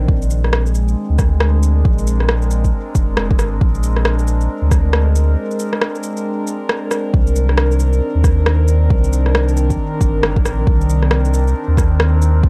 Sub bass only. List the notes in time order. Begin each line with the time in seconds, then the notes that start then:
0.08 A#1
1.10 D2
1.85 A#1
2.95 F1
3.17 F1
3.38 G#1
3.61 A#1
4.62 D2
7.14 C2
8.15 D#2
8.90 C2
10.01 G1
10.22 G1
10.45 A#1
10.67 C2
11.68 D#2
12.43 C2